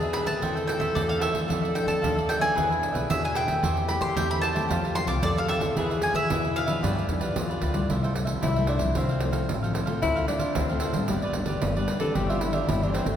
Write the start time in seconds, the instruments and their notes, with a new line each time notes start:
Already playing: upright bass E2, nylon-string guitar B2 B3 D4 G#4, tenor saxophone G#4, mandolin A5
0.02 cavaquinho G#4 B4 E5, pandeiro
0.13 cavaquinho D4 G#4 B4 E5, mandolin B5, pandeiro
0.25 nylon-string guitar A3 C4 G4, cavaquinho G#4 B4 E5, mandolin A5, pandeiro
0.41 upright bass E2, nylon-string guitar E3, cavaquinho A4 C5 E5 G5, tenor saxophone A4, pandeiro
0.55 cavaquinho C5 E5 G5, pandeiro
0.66 nylon-string guitar A3 C4, mandolin G5, muted cavaquinho stroke, pandeiro
0.70 nylon-string guitar G4
0.79 upright bass E2, cavaquinho C5 E5 G5, mandolin E5, pandeiro
0.95 upright bass E2, nylon-string guitar E3 A3 C4 G4, mandolin D5, pandeiro
1.09 cavaquinho C5 E5 G5, mandolin F5, pandeiro
1.20 cavaquinho A4 C5 E5 G5, mandolin E5, pandeiro
1.32 upright bass E2, nylon-string guitar E3 A3 D4, cavaquinho C5 E5 G5, pandeiro
1.48 upright bass F2, nylon-string guitar F2, cavaquinho F4 A4 D5 E5, tenor saxophone A4, pandeiro
1.62 cavaquinho A4 D5 E5, pandeiro
1.74 nylon-string guitar E3 A3 D4, mandolin G5, muted cavaquinho stroke, pandeiro
1.87 upright bass F3, mandolin A5, pandeiro
2.01 upright bass D#2, nylon-string guitar F2 A3, cavaquinho F4 A4 D5 E5, pandeiro
2.06 nylon-string guitar D4
2.15 cavaquinho A4 D5 E5, pandeiro
2.28 cavaquinho F4 A4 D5 E5, mandolin G5, pandeiro
2.39 nylon-string guitar B3 D4 G#4, cavaquinho A4 D5 E5, mandolin G#5, pandeiro
2.55 upright bass E2, nylon-string guitar E3, cavaquinho D4 G#4 B4 E5, tenor saxophone E4, pandeiro
2.70 cavaquinho G#4 B4 E5, pandeiro
2.81 nylon-string guitar B3 D4 G#4, muted cavaquinho stroke, pandeiro
2.92 upright bass B1, cavaquinho G#4 B4 E5, pandeiro
3.10 upright bass E2, nylon-string guitar B2 B3 D4 G#4, mandolin E5, pandeiro
3.24 cavaquinho G#4 B4 E5, mandolin G#5, pandeiro
3.34 cavaquinho D4 G#4 B4 E5, mandolin G5, pandeiro
3.46 upright bass E2, nylon-string guitar A3 C4 G4, cavaquinho G#4 B4 E5, pandeiro
3.63 upright bass E2, nylon-string guitar E3, tenor saxophone G4, cavaquinho A4 C5 E5 G5, pandeiro
3.75 cavaquinho C5 E5 G5, pandeiro
3.87 nylon-string guitar A3 C4 G4, mandolin B5, muted cavaquinho stroke, pandeiro
4.01 upright bass E3, mandolin C6, pandeiro
4.16 upright bass E2, nylon-string guitar E3 A3 C4 G4, cavaquinho A4 C5 E5 G5, mandolin G5, pandeiro
4.30 cavaquinho C5 E5 G5, mandolin B5, pandeiro
4.41 cavaquinho A4 C5 E5 G5, mandolin A5, pandeiro
4.53 nylon-string guitar A3 C4 G4, cavaquinho C5 E5 G5, pandeiro
4.69 upright bass F2, nylon-string guitar F3, tenor saxophone F4, cavaquinho G4 A4 F5 A5, pandeiro
4.84 cavaquinho G4 F5 A5, pandeiro
4.95 nylon-string guitar A3 C4 G4, mandolin C6, muted cavaquinho stroke, pandeiro
5.07 upright bass C2, cavaquinho G4 F5 A5, mandolin D6, pandeiro
5.23 upright bass F2, nylon-string guitar C3 A3 C4 G4, tenor saxophone A4, mandolin D5, pandeiro
5.37 cavaquinho G4 F5 A5, mandolin F5, pandeiro
5.48 cavaquinho G4 A4 F5 A5, mandolin E5, pandeiro
5.60 upright bass F2, nylon-string guitar B3 E4 G#4, cavaquinho G4 F5 A5, pandeiro
5.76 upright bass E2, nylon-string guitar E3, cavaquinho E4 G#4 B4 E5, tenor saxophone G#4, pandeiro
5.91 cavaquinho G#4 B4 E5, pandeiro
6.02 nylon-string guitar B3 E4 G#4, mandolin G#5, pandeiro
6.14 upright bass E3, mandolin E5, pandeiro
6.30 upright bass E2, nylon-string guitar B2 B3 E4 G#4, cavaquinho E4 G#4 B4 E5, tenor saxophone E4, pandeiro
6.44 cavaquinho G#4 B4 E5, pandeiro
6.55 cavaquinho E4 G#4 B4 E5, mandolin F5, pandeiro
6.66 nylon-string guitar F3 B3 D4, cavaquinho G#4 B4 E5, pandeiro
6.82 upright bass G2, nylon-string guitar G2, tenor saxophone D4, cavaquinho F4 G4 B4 D5, pandeiro
6.96 cavaquinho G4 B4 D5, pandeiro
7.08 upright bass F2, nylon-string guitar F3 B3 D4, muted cavaquinho stroke, pandeiro
7.20 cavaquinho G4 B4 D5, pandeiro
7.36 upright bass E2, nylon-string guitar D3 F3 B3 D4, tenor saxophone F4, pandeiro
7.49 cavaquinho G4 B4 D5, pandeiro
7.62 upright bass D2, cavaquinho F4 G4 B4 D5, pandeiro
7.73 nylon-string guitar G3 A3 E4, cavaquinho G4 B4 D5, pandeiro
7.89 upright bass C2, nylon-string guitar C3, cavaquinho E4 A4 C5 E5, pandeiro
8.03 cavaquinho A4 C5 E5, pandeiro
8.14 nylon-string guitar G3 A3 E4, muted cavaquinho stroke, pandeiro
8.25 cavaquinho A4 C5 E5, pandeiro
8.41 upright bass C2, nylon-string guitar G2, cavaquinho E4 A4 C5 E5, tenor saxophone E4, pandeiro
8.56 nylon-string guitar G3 A3 E4, cavaquinho A4 C5 E5, pandeiro
8.67 tenor saxophone D4, cavaquinho E4 A4 C5 E5, pandeiro
8.79 upright bass C2, nylon-string guitar F3 A3, pandeiro
8.83 nylon-string guitar E4
8.95 upright bass C2, nylon-string guitar C3, tenor saxophone C4, cavaquinho E4 A4 C5 F5, pandeiro
9.09 cavaquinho A4 C5 F5, pandeiro
9.20 nylon-string guitar F3 A3 E4, muted cavaquinho stroke, pandeiro
9.32 cavaquinho A4 C5 F5, pandeiro
9.49 upright bass A1, nylon-string guitar C3, pandeiro
9.62 nylon-string guitar F3 A3, cavaquinho A4 C5 F5, pandeiro
9.67 nylon-string guitar E4
9.73 cavaquinho E4 A4 C5 F5, pandeiro
9.86 nylon-string guitar A3 C4 F4, cavaquinho A4 C5 F5, pandeiro
10.02 upright bass D2, nylon-string guitar D3, cavaquinho D4 A4 C5 F5, tenor saxophone E4, pandeiro
10.16 cavaquinho A4 C5 F5, pandeiro
10.27 nylon-string guitar A3 C4 F4, tenor saxophone D4, muted cavaquinho stroke, pandeiro
10.39 cavaquinho A4 C5 F5, pandeiro
10.54 upright bass D2, nylon-string guitar A2, tenor saxophone C4, cavaquinho D4 A4 C5 F5, pandeiro
10.69 nylon-string guitar A3 C4 F4, cavaquinho A4 C5 F5, pandeiro
10.80 cavaquinho D4 A4 C5 F5, pandeiro
10.93 upright bass A1, nylon-string guitar G3 B3 D4, pandeiro
11.08 upright bass G1, nylon-string guitar G2, cavaquinho D4 G4 B4 D5, pandeiro
11.22 cavaquinho G4 B4 D5, pandeiro
11.33 nylon-string guitar G3 B3, muted cavaquinho stroke, pandeiro
11.38 nylon-string guitar D4
11.46 cavaquinho G4 B4 D5, pandeiro
11.62 upright bass G1, nylon-string guitar D3, pandeiro
11.76 nylon-string guitar G3 B3 D4, cavaquinho G4 B4 D5, pandeiro
11.88 cavaquinho D4 G4 B4 D5, pandeiro
12.00 nylon-string guitar E3 C4 D4, cavaquinho G4 B4 D5, tenor saxophone A4, pandeiro
12.15 upright bass G1, nylon-string guitar G2, cavaquinho D4 G4 C5 E5, tenor saxophone G4, pandeiro
12.29 tenor saxophone F4, cavaquinho G4 C5 E5, pandeiro
12.41 nylon-string guitar E3 C4 D4, tenor saxophone E4, muted cavaquinho stroke, pandeiro
12.53 tenor saxophone D4, cavaquinho G4 C5 E5, pandeiro
12.67 upright bass G1, nylon-string guitar G2, cavaquinho D4 G4 C5 E5, tenor saxophone E4, pandeiro
12.82 nylon-string guitar E3 C4 D4, tenor saxophone D4, cavaquinho G4 C5 E5, pandeiro
12.93 tenor saxophone C4, cavaquinho D4 G4 C5 E5, pandeiro
13.06 upright bass G1, nylon-string guitar A3 C4 G4, tenor saxophone A3, pandeiro